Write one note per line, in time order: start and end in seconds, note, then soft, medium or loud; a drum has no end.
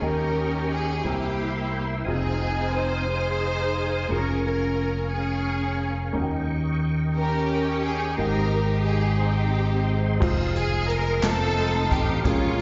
0.00 1.00 D#2 soft
0.00 1.00 D#3 soft
0.00 1.04 C#4 soft
0.00 1.04 D#4 soft
0.00 2.02 A#4 soft
0.00 1.04 A#4 soft
0.00 1.04 D#5 soft
0.00 1.04 G5 soft
0.00 2.05 G5 soft
0.00 1.01 C#6 soft
0.04 1.01 C#4 soft
0.04 1.01 G4 soft
0.04 0.68 A#4 medium
0.73 1.06 G#4 medium
1.04 2.03 C2 soft
1.04 2.03 C3 soft
1.04 2.03 A#3 soft
1.04 2.04 C4 soft
1.04 2.06 E4 soft
1.04 2.03 E4 soft
1.04 2.07 G4 soft
1.04 1.82 G4 medium
1.04 2.07 A#4 soft
1.04 2.05 E5 soft
1.04 2.05 C6 soft
2.04 4.06 F1 medium
2.04 4.06 C4 soft
2.04 4.06 D#4 soft
2.04 3.05 D#4 soft
2.04 4.07 F4 soft
2.04 4.07 G#4 soft
2.04 4.07 C5 soft
2.04 6.09 F5 soft
2.04 4.08 G#5 soft
2.04 4.07 D#6 soft
2.09 3.05 C4 soft
2.09 2.72 G#4 medium
2.75 3.09 C5 medium
3.11 4.08 D#4 medium
3.11 4.08 G#4 medium
3.11 4.08 C5 medium
4.08 6.10 F1 medium
4.08 6.09 A#3 soft
4.08 6.10 C#4 soft
4.08 6.10 F4 soft
4.08 6.11 G#4 soft
4.08 8.14 A#4 soft
4.08 4.45 A#4 medium
4.08 6.13 G#5 soft
4.08 8.14 C#6 soft
4.14 4.45 C#4 soft
4.46 5.15 C#4 soft
4.46 5.09 A#4 medium
5.15 6.12 C#4 soft
5.15 5.90 G#4 medium
6.13 8.14 D#2 medium
6.13 7.12 D#3 medium
6.13 8.13 A#3 medium
6.13 8.13 C#4 soft
6.13 8.14 D#4 soft
6.13 6.21 F#4 soft
6.13 8.16 D#5 soft
6.13 10.18 G5 soft
6.22 8.18 G5 medium
7.16 8.14 C#4 medium
7.16 8.15 G4 medium
7.16 7.80 A#4 medium
7.84 8.18 G#4 medium
8.17 10.18 G#1 medium
8.17 9.16 G#2 soft
8.17 10.19 G#3 soft
8.17 10.17 G#3 soft
8.17 8.24 A#3 soft
8.17 9.16 D#4 medium
8.17 10.18 D#4 soft
8.17 9.16 G4 medium
8.17 8.81 A#4 medium
8.17 10.20 D#5 soft
8.17 10.19 G5 soft
8.17 10.19 C6 soft
8.24 10.19 C4 soft
8.87 9.20 G#4 medium
9.21 10.18 C4 soft
9.21 10.18 D#4 soft
9.21 9.97 G4 medium
10.20 11.19 F1 medium
10.20 10.95 G#3 medium
10.20 10.95 C4 medium
10.20 10.95 D#4 medium
10.20 10.96 F4 medium
10.20 11.22 G#4 medium
10.20 12.23 D#5 medium
10.20 12.23 F5 medium
10.20 12.23 C6 medium
10.20 kick loud
10.20 crash medium
10.56 10.87 G#4 medium
10.56 closed hi-hat soft
10.89 11.23 A#4 loud
10.89 closed hi-hat medium
11.22 11.91 F1 medium
11.22 11.97 A3 medium
11.22 11.97 C4 medium
11.22 12.21 C4 medium
11.22 11.97 D#4 medium
11.22 12.21 D#4 medium
11.22 11.98 F4 medium
11.22 12.24 A4 medium
11.22 11.91 A4 loud
11.22 snare loud
11.22 clap medium
11.22 closed hi-hat medium
11.58 closed hi-hat soft
11.91 12.22 A1 medium
11.91 12.26 G4 medium
11.91 kick medium
11.91 closed hi-hat medium
12.23 12.62 A#1 medium
12.23 12.62 A#2 medium
12.23 12.62 G#3 medium
12.23 12.62 A#3 medium
12.23 12.62 C#4 medium
12.23 12.62 F4 medium
12.23 12.62 G#4 medium
12.23 12.62 A#4 medium
12.23 12.62 F5 soft
12.23 12.62 G#5 medium
12.23 12.62 C#6 medium
12.23 kick loud
12.23 closed hi-hat medium